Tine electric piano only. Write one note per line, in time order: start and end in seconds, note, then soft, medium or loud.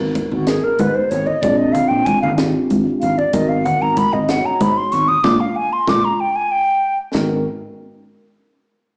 0.00 0.34 B3 medium
0.00 0.34 D#4 medium
0.00 0.34 F#4 medium
0.00 0.35 A#4 loud
0.48 1.30 B3 medium
0.48 1.30 D#4 medium
0.48 1.30 F#4 soft
0.48 1.31 A#4 medium
1.42 2.25 C4 medium
1.42 2.25 D4 medium
1.42 2.25 F4 medium
1.42 2.26 G#4 medium
2.38 3.21 C4 medium
2.38 3.21 D4 medium
2.38 3.21 F4 medium
2.38 3.21 G4 medium
3.33 4.16 B3 medium
3.33 4.16 D#4 medium
3.33 4.16 F#4 medium
3.33 4.16 A#4 medium
4.28 5.11 B3 medium
4.28 5.11 D#4 medium
4.28 5.11 F#4 medium
4.28 5.12 C#5 medium
5.24 5.34 A#3 medium
5.24 5.34 D4 loud
5.24 5.34 F4 loud
5.87 5.98 A#3 medium
5.87 5.98 D4 medium
5.87 5.97 F4 medium
7.14 7.44 B3 medium
7.14 7.44 D#4 medium
7.14 7.44 F#4 medium
7.14 7.44 A#4 medium